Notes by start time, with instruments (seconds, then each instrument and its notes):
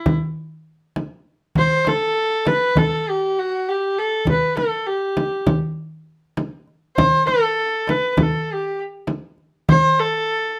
Already playing: kamancheh E4
0.06 frame drum, darbuka dum
0.96 darbuka tek, frame drum
1.55 kamancheh C5, darbuka dum, frame drum
1.85 kamancheh A4, darbuka tek, frame drum
2.45 kamancheh B4, darbuka tek, frame drum
2.76 kamancheh A4, darbuka dum, frame drum
3.10 kamancheh G4
3.39 kamancheh F#4
3.69 kamancheh G4
3.96 kamancheh A4, darbuka ka
4.25 darbuka dum, frame drum
4.30 kamancheh B4
4.57 kamancheh A4, darbuka tek, frame drum
4.87 kamancheh G4
5.17 darbuka tek, frame drum
5.46 frame drum, darbuka dum
6.37 darbuka tek, frame drum
6.67 darbuka ka
6.96 kamancheh C5, darbuka dum, frame drum
7.27 kamancheh A4, darbuka tek, frame drum
7.87 kamancheh B4, darbuka tek, frame drum
8.12 kamancheh B4
8.17 darbuka dum, frame drum
8.22 kamancheh A4
8.53 kamancheh G4
9.07 darbuka tek, frame drum
9.38 darbuka ka
9.69 kamancheh C5, frame drum, darbuka dum
9.99 kamancheh A4, darbuka tek